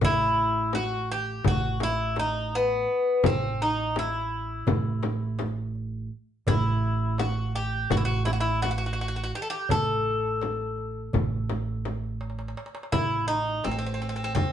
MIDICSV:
0, 0, Header, 1, 5, 480
1, 0, Start_track
1, 0, Tempo, 716846
1, 10, Time_signature, 9, 3, 24, 8
1, 9725, End_track
2, 0, Start_track
2, 0, Title_t, "Bouzouki"
2, 0, Program_c, 0, 25
2, 30, Note_on_c, 0, 64, 97
2, 498, Note_off_c, 0, 64, 0
2, 501, Note_on_c, 0, 66, 82
2, 743, Note_off_c, 0, 66, 0
2, 747, Note_on_c, 0, 67, 86
2, 985, Note_off_c, 0, 67, 0
2, 988, Note_on_c, 0, 66, 86
2, 1224, Note_off_c, 0, 66, 0
2, 1227, Note_on_c, 0, 64, 86
2, 1467, Note_off_c, 0, 64, 0
2, 1470, Note_on_c, 0, 63, 84
2, 1708, Note_off_c, 0, 63, 0
2, 1709, Note_on_c, 0, 59, 85
2, 2182, Note_off_c, 0, 59, 0
2, 2184, Note_on_c, 0, 60, 83
2, 2424, Note_on_c, 0, 63, 81
2, 2426, Note_off_c, 0, 60, 0
2, 2666, Note_off_c, 0, 63, 0
2, 2670, Note_on_c, 0, 64, 73
2, 3596, Note_off_c, 0, 64, 0
2, 4338, Note_on_c, 0, 64, 79
2, 4815, Note_off_c, 0, 64, 0
2, 4818, Note_on_c, 0, 66, 78
2, 5056, Note_off_c, 0, 66, 0
2, 5059, Note_on_c, 0, 67, 83
2, 5298, Note_off_c, 0, 67, 0
2, 5300, Note_on_c, 0, 66, 81
2, 5334, Note_off_c, 0, 66, 0
2, 5337, Note_on_c, 0, 64, 69
2, 5387, Note_off_c, 0, 64, 0
2, 5390, Note_on_c, 0, 66, 79
2, 5524, Note_off_c, 0, 66, 0
2, 5526, Note_on_c, 0, 64, 78
2, 5574, Note_off_c, 0, 64, 0
2, 5577, Note_on_c, 0, 66, 66
2, 5626, Note_off_c, 0, 66, 0
2, 5628, Note_on_c, 0, 64, 80
2, 5772, Note_off_c, 0, 64, 0
2, 5774, Note_on_c, 0, 66, 84
2, 5824, Note_off_c, 0, 66, 0
2, 5832, Note_on_c, 0, 66, 61
2, 5871, Note_off_c, 0, 66, 0
2, 5879, Note_on_c, 0, 66, 62
2, 5926, Note_off_c, 0, 66, 0
2, 5934, Note_on_c, 0, 66, 51
2, 5972, Note_off_c, 0, 66, 0
2, 5980, Note_on_c, 0, 66, 58
2, 6027, Note_off_c, 0, 66, 0
2, 6035, Note_on_c, 0, 66, 55
2, 6073, Note_off_c, 0, 66, 0
2, 6082, Note_on_c, 0, 66, 59
2, 6127, Note_off_c, 0, 66, 0
2, 6135, Note_on_c, 0, 66, 53
2, 6177, Note_off_c, 0, 66, 0
2, 6185, Note_on_c, 0, 66, 65
2, 6234, Note_off_c, 0, 66, 0
2, 6263, Note_on_c, 0, 67, 81
2, 6305, Note_off_c, 0, 67, 0
2, 6308, Note_on_c, 0, 69, 73
2, 6353, Note_off_c, 0, 69, 0
2, 6361, Note_on_c, 0, 67, 88
2, 6502, Note_off_c, 0, 67, 0
2, 6504, Note_on_c, 0, 69, 96
2, 8153, Note_off_c, 0, 69, 0
2, 8653, Note_on_c, 0, 64, 95
2, 8888, Note_off_c, 0, 64, 0
2, 8890, Note_on_c, 0, 63, 84
2, 9136, Note_on_c, 0, 60, 74
2, 9140, Note_off_c, 0, 63, 0
2, 9175, Note_off_c, 0, 60, 0
2, 9183, Note_on_c, 0, 60, 50
2, 9223, Note_off_c, 0, 60, 0
2, 9231, Note_on_c, 0, 60, 57
2, 9276, Note_off_c, 0, 60, 0
2, 9284, Note_on_c, 0, 60, 50
2, 9326, Note_off_c, 0, 60, 0
2, 9334, Note_on_c, 0, 60, 53
2, 9377, Note_off_c, 0, 60, 0
2, 9385, Note_on_c, 0, 60, 46
2, 9428, Note_off_c, 0, 60, 0
2, 9436, Note_on_c, 0, 60, 55
2, 9473, Note_off_c, 0, 60, 0
2, 9481, Note_on_c, 0, 60, 51
2, 9528, Note_off_c, 0, 60, 0
2, 9536, Note_on_c, 0, 60, 74
2, 9589, Note_off_c, 0, 60, 0
2, 9607, Note_on_c, 0, 60, 79
2, 9725, Note_off_c, 0, 60, 0
2, 9725, End_track
3, 0, Start_track
3, 0, Title_t, "Upright bass"
3, 0, Program_c, 1, 32
3, 14, Note_on_c, 1, 33, 95
3, 947, Note_off_c, 1, 33, 0
3, 972, Note_on_c, 1, 33, 85
3, 1906, Note_off_c, 1, 33, 0
3, 2176, Note_on_c, 1, 33, 89
3, 3109, Note_off_c, 1, 33, 0
3, 3133, Note_on_c, 1, 33, 87
3, 4068, Note_off_c, 1, 33, 0
3, 4336, Note_on_c, 1, 33, 99
3, 5269, Note_off_c, 1, 33, 0
3, 5296, Note_on_c, 1, 33, 89
3, 6230, Note_off_c, 1, 33, 0
3, 6496, Note_on_c, 1, 33, 78
3, 7429, Note_off_c, 1, 33, 0
3, 7459, Note_on_c, 1, 33, 79
3, 8391, Note_off_c, 1, 33, 0
3, 8656, Note_on_c, 1, 33, 81
3, 9109, Note_off_c, 1, 33, 0
3, 9138, Note_on_c, 1, 33, 76
3, 9590, Note_off_c, 1, 33, 0
3, 9616, Note_on_c, 1, 40, 83
3, 9725, Note_off_c, 1, 40, 0
3, 9725, End_track
4, 0, Start_track
4, 0, Title_t, "Darbuka"
4, 11, Note_on_c, 9, 64, 98
4, 78, Note_off_c, 9, 64, 0
4, 490, Note_on_c, 9, 63, 68
4, 557, Note_off_c, 9, 63, 0
4, 970, Note_on_c, 9, 64, 103
4, 1037, Note_off_c, 9, 64, 0
4, 1211, Note_on_c, 9, 63, 70
4, 1277, Note_off_c, 9, 63, 0
4, 1451, Note_on_c, 9, 63, 70
4, 1518, Note_off_c, 9, 63, 0
4, 1691, Note_on_c, 9, 62, 29
4, 1758, Note_off_c, 9, 62, 0
4, 2167, Note_on_c, 9, 64, 110
4, 2234, Note_off_c, 9, 64, 0
4, 2651, Note_on_c, 9, 63, 66
4, 2718, Note_off_c, 9, 63, 0
4, 3126, Note_on_c, 9, 64, 106
4, 3193, Note_off_c, 9, 64, 0
4, 3366, Note_on_c, 9, 63, 70
4, 3433, Note_off_c, 9, 63, 0
4, 3607, Note_on_c, 9, 63, 70
4, 3674, Note_off_c, 9, 63, 0
4, 3851, Note_on_c, 9, 62, 28
4, 3918, Note_off_c, 9, 62, 0
4, 4330, Note_on_c, 9, 64, 97
4, 4397, Note_off_c, 9, 64, 0
4, 4809, Note_on_c, 9, 63, 65
4, 4876, Note_off_c, 9, 63, 0
4, 5290, Note_on_c, 9, 64, 91
4, 5357, Note_off_c, 9, 64, 0
4, 5532, Note_on_c, 9, 63, 71
4, 5599, Note_off_c, 9, 63, 0
4, 5772, Note_on_c, 9, 63, 65
4, 5839, Note_off_c, 9, 63, 0
4, 6014, Note_on_c, 9, 62, 26
4, 6081, Note_off_c, 9, 62, 0
4, 6489, Note_on_c, 9, 64, 101
4, 6556, Note_off_c, 9, 64, 0
4, 6974, Note_on_c, 9, 63, 66
4, 7041, Note_off_c, 9, 63, 0
4, 7217, Note_on_c, 9, 62, 26
4, 7284, Note_off_c, 9, 62, 0
4, 7454, Note_on_c, 9, 64, 90
4, 7521, Note_off_c, 9, 64, 0
4, 7697, Note_on_c, 9, 63, 65
4, 7764, Note_off_c, 9, 63, 0
4, 7938, Note_on_c, 9, 63, 59
4, 8005, Note_off_c, 9, 63, 0
4, 8174, Note_on_c, 9, 63, 57
4, 8234, Note_on_c, 9, 62, 57
4, 8241, Note_off_c, 9, 63, 0
4, 8294, Note_on_c, 9, 63, 62
4, 8301, Note_off_c, 9, 62, 0
4, 8359, Note_on_c, 9, 62, 69
4, 8361, Note_off_c, 9, 63, 0
4, 8419, Note_on_c, 9, 63, 76
4, 8426, Note_off_c, 9, 62, 0
4, 8477, Note_on_c, 9, 62, 76
4, 8486, Note_off_c, 9, 63, 0
4, 8535, Note_on_c, 9, 63, 80
4, 8544, Note_off_c, 9, 62, 0
4, 8593, Note_on_c, 9, 62, 83
4, 8602, Note_off_c, 9, 63, 0
4, 8656, Note_on_c, 9, 64, 90
4, 8659, Note_off_c, 9, 62, 0
4, 8723, Note_off_c, 9, 64, 0
4, 8894, Note_on_c, 9, 62, 26
4, 8961, Note_off_c, 9, 62, 0
4, 9132, Note_on_c, 9, 63, 62
4, 9199, Note_off_c, 9, 63, 0
4, 9608, Note_on_c, 9, 64, 86
4, 9675, Note_off_c, 9, 64, 0
4, 9725, End_track
5, 0, Start_track
5, 0, Title_t, "Frame drum"
5, 9, Note_on_c, 9, 64, 90
5, 76, Note_off_c, 9, 64, 0
5, 489, Note_on_c, 9, 64, 66
5, 556, Note_off_c, 9, 64, 0
5, 967, Note_on_c, 9, 64, 91
5, 1034, Note_off_c, 9, 64, 0
5, 1207, Note_on_c, 9, 64, 70
5, 1274, Note_off_c, 9, 64, 0
5, 1448, Note_on_c, 9, 64, 62
5, 1515, Note_off_c, 9, 64, 0
5, 2167, Note_on_c, 9, 64, 99
5, 2234, Note_off_c, 9, 64, 0
5, 2652, Note_on_c, 9, 64, 70
5, 2719, Note_off_c, 9, 64, 0
5, 3130, Note_on_c, 9, 64, 90
5, 3197, Note_off_c, 9, 64, 0
5, 3369, Note_on_c, 9, 64, 69
5, 3436, Note_off_c, 9, 64, 0
5, 3611, Note_on_c, 9, 64, 69
5, 3678, Note_off_c, 9, 64, 0
5, 4335, Note_on_c, 9, 64, 92
5, 4402, Note_off_c, 9, 64, 0
5, 4817, Note_on_c, 9, 64, 75
5, 4884, Note_off_c, 9, 64, 0
5, 5293, Note_on_c, 9, 64, 88
5, 5360, Note_off_c, 9, 64, 0
5, 5535, Note_on_c, 9, 64, 65
5, 5602, Note_off_c, 9, 64, 0
5, 5778, Note_on_c, 9, 64, 65
5, 5845, Note_off_c, 9, 64, 0
5, 6496, Note_on_c, 9, 64, 81
5, 6563, Note_off_c, 9, 64, 0
5, 6981, Note_on_c, 9, 64, 60
5, 7048, Note_off_c, 9, 64, 0
5, 7459, Note_on_c, 9, 64, 83
5, 7526, Note_off_c, 9, 64, 0
5, 7697, Note_on_c, 9, 64, 66
5, 7764, Note_off_c, 9, 64, 0
5, 7937, Note_on_c, 9, 64, 61
5, 8004, Note_off_c, 9, 64, 0
5, 8656, Note_on_c, 9, 64, 75
5, 8723, Note_off_c, 9, 64, 0
5, 9136, Note_on_c, 9, 64, 62
5, 9203, Note_off_c, 9, 64, 0
5, 9615, Note_on_c, 9, 64, 82
5, 9682, Note_off_c, 9, 64, 0
5, 9725, End_track
0, 0, End_of_file